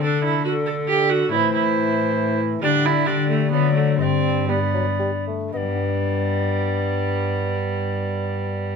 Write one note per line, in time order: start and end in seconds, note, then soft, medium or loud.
0.00 1.28 D3 medium
0.00 1.34 D3 soft
0.00 0.46 D3 medium
0.00 1.28 A3 soft
0.00 1.34 D4 soft
0.00 0.24 D4 medium
0.00 0.45 A4 medium
0.24 0.44 E4 medium
0.44 1.34 D3 medium
0.44 0.52 F#4 medium
0.44 1.34 A4 medium
0.66 0.74 A4 medium
0.89 1.11 G4 medium
1.10 1.31 F#4 medium
1.29 2.60 A2 medium
1.29 2.64 A2 medium
1.29 2.62 E3 medium
1.29 2.59 A3 soft
1.29 2.63 C4 soft
1.29 2.64 E4 soft
1.29 1.53 E4 medium
1.29 1.37 D5 medium
1.36 2.41 C5 medium
1.54 2.39 E4 medium
2.60 3.48 D3 medium
2.60 3.51 D3 medium
2.60 2.95 G3 medium
2.60 3.48 A3 soft
2.60 3.48 D4 soft
2.60 2.87 D4 loud
2.60 3.54 G4 soft
2.60 3.04 D5 medium
2.85 3.08 E4 medium
3.06 3.54 G3 medium
3.06 3.29 D4 medium
3.06 3.51 D5 medium
3.29 3.51 A3 medium
3.49 4.01 D3 soft
3.49 4.01 D3 medium
3.49 4.01 F#3 medium
3.49 4.00 A3 soft
3.49 3.74 B3 medium
3.49 3.96 D4 soft
3.49 4.01 F#4 soft
3.49 3.98 D5 medium
3.75 3.98 A3 medium
3.97 5.28 G2 medium
3.97 5.53 G2 soft
3.97 4.48 G3 medium
3.97 4.51 C4 medium
3.97 4.45 D4 soft
3.97 4.04 D#5 medium
4.03 4.47 D5 medium
4.47 4.60 G3 medium
4.47 5.27 B3 medium
4.47 5.74 D4 soft
4.47 5.25 D5 medium
4.74 4.85 F#3 medium
4.99 5.11 G3 medium
5.27 5.53 A3 medium
5.52 8.76 G2 medium
5.52 8.76 G2 soft
5.52 8.76 G3 medium
5.52 8.76 B3 medium
5.52 5.58 D#5 medium
5.57 8.76 D5 medium
5.62 8.76 G3 soft
5.68 8.76 B3 soft
5.75 8.76 D4 soft
5.82 8.76 B4 soft